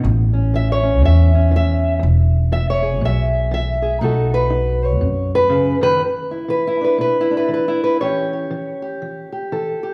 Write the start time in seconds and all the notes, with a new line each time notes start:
0.03 A1 E2
0.33 C#4
0.54 E3 E5
0.72 C#5
0.83 C#4
1.02 E2 E5
1.34 C#4
1.51 E3
1.56 E5
1.99 E1 E2
2.52 E3 E5
2.70 C#5
2.82 G#4
3.01 B1 B2
3.05 E5
3.51 E3 E5
3.82 G#4
4.01 B1 B2 D#4 F#4 A4
4.34 B4
4.50 D#4
4.85 C#5
5.01 F#2 B2
5.35 B4
5.49 C#3
5.81 D#3 B4
5.99 E2
6.31 E4
6.48 E3 B4
6.67 E4
6.81 D4 B4
6.98 B2 B4
7.21 E4
7.31 D4
7.37 B4
7.48 E3
7.54 B4
7.68 E4
7.84 B4
8.00 A2 E3 C#4 G4 C#5
8.33 G4
8.50 E3
8.82 G4
9.02 E3
9.32 G4
9.52 E3 A4
9.83 G4